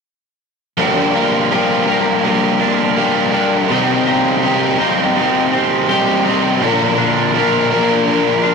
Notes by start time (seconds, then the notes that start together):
0.77 G2 D3 F3 G3 A#3 D4 G4 A#4
1.14 G3 A#3 D4 A#4
1.50 F3 G3 A#3 D4 G4 A#4
1.86 G3 A#3 D4 G4 A#4
2.23 G2 D3 F3 G3 A#3 D4 A#4
2.60 G3 A#3 D4 A#4
2.96 G3 A#3 D4 A#4
3.00 G4
3.32 G3 A#3 D4 G4 A#4
3.68 C3 D#3 G3 C4 D#4 G4
4.04 A#3 C4 D#4 G4
4.42 D#3 G3 C4 D#4 G4
4.79 A#3 C4 D#4 G4
5.15 C3 D#3 G3 C4 D#4 G4
5.52 C4 D#4 G4
5.89 G3 C4 D#4 G4
6.26 C4 D#4 G4
6.60 A#2 D3 F3 A#3 D4 A#4
6.98 F3 A#3 D4 A#4
7.34 F3 A#3 D4 A#4
7.71 F3 A#3 D4 A#4
8.07 A#2 D3 F3 A#3 D4 A#4
8.43 F3 A#3 D4 A#4